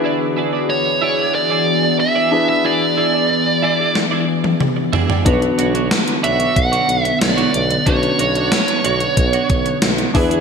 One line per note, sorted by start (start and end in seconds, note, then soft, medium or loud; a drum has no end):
0.00 5.22 E3 medium
0.00 10.40 B3 medium
0.00 2.28 D4 medium
0.00 2.28 E4 medium
0.00 0.25 E4 medium
0.00 5.22 F#4 medium
0.00 2.28 G#4 medium
0.00 5.22 G#4 medium
0.00 2.29 B4 medium
0.00 5.28 D5 medium
0.05 0.20 G#4 medium
0.05 0.19 D5 medium
0.20 muted clean electric guitar stroke soft
0.36 0.53 E4 medium
0.36 0.53 G#4 medium
0.36 0.52 D5 medium
0.53 0.68 E4 medium
0.53 0.69 G#4 medium
0.53 0.69 D5 medium
0.69 1.34 C#5 medium
0.69 muted clean electric guitar stroke soft
0.85 muted clean electric guitar stroke soft
1.01 1.19 E4 medium
1.01 1.18 G#4 medium
1.01 1.17 D5 medium
1.18 1.33 E4 soft
1.18 1.34 G#4 soft
1.18 1.34 D5 medium
1.34 1.96 D5 medium
1.34 muted clean electric guitar stroke soft
1.50 1.66 E4 medium
1.50 1.66 G#4 medium
1.50 1.67 D5 medium
1.67 muted clean electric guitar stroke soft
1.83 muted clean electric guitar stroke soft
1.99 2.48 E5 loud
1.99 muted clean electric guitar stroke soft
2.16 2.31 E4 medium
2.16 2.32 G#4 medium
2.16 2.32 D5 medium
2.31 4.89 D4 medium
2.31 4.89 E4 medium
2.31 4.89 G#4 medium
2.31 4.90 B4 medium
2.31 muted clean electric guitar stroke soft
2.48 2.65 E5 medium
2.48 muted clean electric guitar stroke soft
2.65 2.85 E4 medium
2.65 2.81 G#4 medium
2.65 3.96 D5 medium
2.65 2.80 D5 loud
2.81 muted clean electric guitar stroke soft
2.97 3.13 E4 medium
2.97 3.13 G#4 medium
2.97 3.12 D5 medium
3.14 3.29 E4 soft
3.14 3.29 G#4 medium
3.14 3.30 D5 medium
3.30 muted clean electric guitar stroke soft
3.46 muted clean electric guitar stroke soft
3.62 3.79 E4 medium
3.62 3.78 G#4 medium
3.62 3.77 D5 medium
3.79 3.94 E4 soft
3.79 3.95 G#4 medium
3.79 3.95 D5 medium
3.95 muted clean electric guitar stroke soft
3.95 snare medium
4.11 4.26 E4 medium
4.11 4.27 G#4 medium
4.11 4.28 D5 medium
4.28 muted clean electric guitar stroke soft
4.44 muted clean electric guitar stroke medium
4.44 high tom medium
4.60 muted clean electric guitar stroke soft
4.60 mid tom medium
4.77 muted clean electric guitar stroke soft
4.93 5.10 E4 medium
4.93 5.09 G#4 medium
4.93 5.08 D5 medium
4.93 floor tom medium
5.09 5.25 E4 medium
5.09 5.26 G#4 medium
5.09 5.25 D5 medium
5.09 floor tom medium
5.25 5.49 B1 loud
5.25 10.11 D3 medium
5.25 7.82 B3 medium
5.25 5.46 D4 medium
5.25 7.82 D4 medium
5.25 5.42 F#4 medium
5.25 7.83 F#4 medium
5.25 7.83 B4 medium
5.25 5.41 C#5 medium
5.25 kick loud
5.25 closed hi-hat medium
5.42 muted clean electric guitar stroke soft
5.42 closed hi-hat soft
5.58 5.94 B1 medium
5.58 5.74 D4 medium
5.58 5.74 F#4 medium
5.58 5.73 C#5 medium
5.58 closed hi-hat medium
5.74 5.90 D4 soft
5.74 5.90 F#4 medium
5.74 5.91 C#5 medium
5.74 closed hi-hat medium
5.91 snare loud
5.91 closed hi-hat medium
6.07 muted clean electric guitar stroke soft
6.07 closed hi-hat medium
6.23 6.47 B1 medium
6.23 6.40 D4 medium
6.23 6.39 F#4 medium
6.23 6.38 C#5 medium
6.23 6.54 E5 medium
6.23 closed hi-hat medium
6.40 6.55 D4 soft
6.40 6.56 F#4 medium
6.40 6.56 C#5 medium
6.40 closed hi-hat soft
6.56 6.80 B1 medium
6.56 7.02 F#5 loud
6.56 muted clean electric guitar stroke soft
6.56 kick medium
6.56 closed hi-hat medium
6.72 6.87 D4 medium
6.72 6.88 F#4 medium
6.72 6.89 C#5 medium
6.72 closed hi-hat soft
6.89 7.12 B1 medium
6.89 muted clean electric guitar stroke soft
6.89 closed hi-hat medium
7.02 7.17 E5 loud
7.02 muted clean electric guitar stroke soft
7.02 closed hi-hat soft
7.21 7.45 B1 medium
7.21 7.89 D5 medium
7.21 muted clean electric guitar stroke soft
7.21 snare loud
7.21 closed hi-hat medium
7.37 7.53 D4 medium
7.37 7.53 F#4 medium
7.37 7.54 C#5 medium
7.37 closed hi-hat soft
7.54 7.77 B1 loud
7.54 muted clean electric guitar stroke soft
7.54 closed hi-hat medium
7.70 muted clean electric guitar stroke soft
7.70 closed hi-hat soft
7.86 8.10 B1 loud
7.86 10.10 C#4 medium
7.86 8.07 D4 medium
7.86 10.11 D4 medium
7.86 8.03 F#4 medium
7.86 10.11 F#4 medium
7.86 10.12 B4 medium
7.86 9.78 C#5 medium
7.86 8.02 C#5 medium
7.86 kick loud
7.86 closed hi-hat medium
8.03 muted clean electric guitar stroke soft
8.03 closed hi-hat soft
8.19 8.54 B1 medium
8.19 8.35 D4 medium
8.19 8.35 F#4 medium
8.19 8.34 C#5 medium
8.19 closed hi-hat medium
8.35 8.51 D4 medium
8.35 8.51 F#4 medium
8.35 8.52 C#5 medium
8.35 closed hi-hat medium
8.52 snare loud
8.52 closed hi-hat medium
8.68 muted clean electric guitar stroke soft
8.68 closed hi-hat medium
8.84 9.08 B1 medium
8.84 9.01 D4 medium
8.84 9.00 F#4 medium
8.84 8.99 C#5 medium
8.84 closed hi-hat medium
9.00 9.16 D4 soft
9.00 9.17 F#4 soft
9.00 9.17 C#5 medium
9.00 closed hi-hat soft
9.17 9.40 B1 loud
9.17 muted clean electric guitar stroke soft
9.17 kick medium
9.17 closed hi-hat medium
9.33 9.49 D4 medium
9.33 9.49 F#4 medium
9.33 9.50 C#5 medium
9.33 closed hi-hat soft
9.50 9.73 B1 medium
9.50 muted clean electric guitar stroke soft
9.50 kick medium
9.50 closed hi-hat medium
9.66 muted clean electric guitar stroke soft
9.66 closed hi-hat soft
9.82 10.06 B1 loud
9.82 muted clean electric guitar stroke soft
9.82 snare loud
9.82 closed hi-hat medium
9.98 muted clean electric guitar stroke medium
9.98 closed hi-hat soft
10.14 10.40 E2 loud
10.14 10.40 E3 medium
10.14 10.40 D4 medium
10.14 10.40 E4 medium
10.14 10.32 E4 medium
10.14 10.40 G#4 medium
10.14 10.31 G#4 medium
10.14 10.40 B4 medium
10.14 10.30 D5 medium
10.14 kick loud
10.14 open hi-hat medium
10.31 10.40 E4 medium
10.31 10.40 G#4 medium
10.31 10.40 D5 medium
10.31 closed hi-hat soft